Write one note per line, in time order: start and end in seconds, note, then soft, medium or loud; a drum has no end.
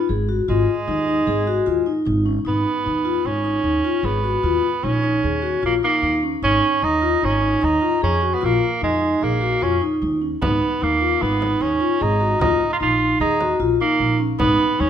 0.00 0.23 B3 medium
0.09 0.41 G#1 medium
0.09 0.20 G#4 soft
0.29 0.39 F#4 medium
0.48 0.64 G#1 medium
0.48 2.03 G#3 medium
0.48 0.69 F4 medium
0.88 1.19 D#2 medium
0.88 0.98 D#4 medium
1.08 1.18 D#4 medium
1.27 1.58 G#1 medium
1.27 1.38 G#4 medium
1.47 1.58 F#4 medium
1.66 1.83 D#2 medium
1.66 1.77 F4 medium
1.86 1.97 D#4 medium
2.06 2.38 G#1 medium
2.06 2.16 D#4 medium
2.26 2.37 C#4 medium
2.45 2.62 G#1 medium
2.45 3.28 B3 medium
2.45 2.66 D#4 medium
2.84 3.17 D#2 medium
2.84 2.95 D#4 medium
3.05 3.16 F4 medium
3.25 3.56 G#1 medium
3.25 4.06 C#4 medium
3.25 3.36 D#4 soft
3.44 3.55 D#4 medium
3.64 3.80 D#2 medium
3.64 3.75 D#4 medium
3.84 3.95 F4 medium
4.03 4.35 G#1 medium
4.03 4.85 B3 medium
4.03 4.15 G#4 medium
4.24 4.35 F#4 medium
4.43 4.59 D#2 medium
4.43 4.65 F4 medium
4.83 5.15 A#1 medium
4.83 5.63 C#4 medium
4.83 4.94 D#4 medium
5.03 5.14 D#4 medium
5.23 5.55 D#2 medium
5.23 5.34 G#4 soft
5.42 5.53 F#4 medium
5.63 5.79 A#1 medium
5.63 5.74 A#3 medium
5.63 5.73 F4 medium
5.83 6.21 A#3 medium
5.83 5.94 D#4 medium
6.02 6.34 D#2 medium
6.02 6.14 D#4 medium
6.23 6.34 C#4 medium
6.42 6.58 G#1 medium
6.42 6.85 C#4 medium
6.42 6.64 D#4 medium
6.82 7.14 D#2 medium
6.82 6.93 D#4 medium
6.82 7.26 D#4 medium
7.02 7.13 F4 medium
7.21 7.54 G#1 medium
7.21 7.65 C#4 medium
7.21 7.32 D#4 medium
7.42 7.52 D#4 medium
7.61 7.78 D#2 medium
7.61 7.72 D#4 medium
7.61 8.03 D#4 medium
7.81 7.92 F4 medium
8.02 8.34 F2 medium
8.02 8.36 C#4 medium
8.02 8.12 G#4 medium
8.21 8.32 F#4 medium
8.34 8.46 B3 medium
8.41 8.58 A#1 medium
8.41 8.83 A#3 medium
8.41 8.62 F4 medium
8.81 9.14 F2 medium
8.81 9.25 G#3 medium
8.81 8.92 D#4 medium
9.02 9.12 D#4 medium
9.21 9.53 A#1 medium
9.21 9.64 A#3 medium
9.21 9.32 G#4 medium
9.41 9.52 F#4 medium
9.61 9.78 F2 medium
9.61 9.82 C#4 medium
9.61 9.72 F4 medium
9.82 9.92 D#4 medium
10.02 10.33 D#2 medium
10.02 10.12 D#4 medium
10.22 10.32 C#4 soft
10.42 10.58 G#1 medium
10.42 10.84 B3 medium
10.42 10.63 D#4 medium
10.42 frame drum medium
10.81 11.13 D#2 medium
10.81 11.23 A#3 medium
10.81 10.92 D#4 medium
11.00 11.11 F4 medium
11.21 11.53 G#1 medium
11.21 11.63 B3 medium
11.21 11.31 D#4 medium
11.41 11.51 D#4 medium
11.41 frame drum soft
11.60 11.76 D#2 medium
11.60 12.04 C#4 medium
11.60 11.71 D#4 medium
11.80 11.91 F4 medium
12.00 12.33 G#1 medium
12.00 12.41 D#4 medium
12.00 12.11 G#4 medium
12.20 12.31 F#4 soft
12.40 12.56 D#2 medium
12.40 12.69 D#4 medium
12.40 12.61 F4 medium
12.40 frame drum medium
12.73 12.77 F4 medium
12.80 13.12 A#1 medium
12.80 12.91 D#4 medium
12.80 13.19 F4 medium
13.00 13.11 D#4 medium
13.20 13.52 D#2 medium
13.20 13.58 D#4 medium
13.20 13.31 G#4 medium
13.41 13.51 F#4 medium
13.41 frame drum soft
13.60 13.76 A#1 medium
13.60 13.71 F4 medium
13.80 14.18 A#3 medium
13.80 13.91 D#4 medium
13.99 14.31 A#1 medium
13.99 14.10 D#4 medium
14.19 14.30 C#4 medium
14.39 14.55 G#1 medium
14.39 14.82 B3 medium
14.39 14.60 D#4 medium
14.39 frame drum soft
14.78 14.90 D#2 medium
14.78 14.90 C#4 medium
14.78 14.89 D#4 medium